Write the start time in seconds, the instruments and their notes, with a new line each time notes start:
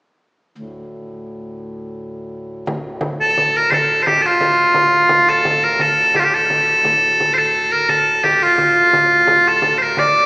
0.58 pipe organ D2 A2
2.67 pipe organ D2 A2, frame drum
3.01 frame drum
3.20 bagpipes A4, frame drum
3.37 frame drum
3.55 bagpipes A#4, frame drum
3.70 bagpipes A4 C5, frame drum
4.03 bagpipes C5
4.07 bagpipes G4, frame drum
4.22 bagpipes A4, frame drum
4.26 bagpipes F4
4.40 frame drum
4.74 frame drum
5.09 frame drum
5.27 bagpipes A4, frame drum
5.45 frame drum
5.63 bagpipes A#4, frame drum
5.79 bagpipes A4, frame drum
5.97 frame drum
6.14 bagpipes G4, frame drum
6.20 bagpipes F4
6.24 bagpipes G4
6.34 bagpipes A4
6.50 frame drum
6.85 pipe organ D2 A2, frame drum
7.20 frame drum
7.34 bagpipes C5, frame drum
7.38 bagpipes A4
7.72 bagpipes A#4, frame drum
7.89 bagpipes A4, frame drum
8.23 bagpipes G4, frame drum
8.41 bagpipes F4, frame drum
8.58 frame drum
8.76 frame drum
8.93 frame drum
9.27 frame drum
9.45 bagpipes A4, frame drum
9.62 frame drum
9.78 bagpipes C5, frame drum
9.82 bagpipes A#4
9.97 bagpipes D5, frame drum
10.16 frame drum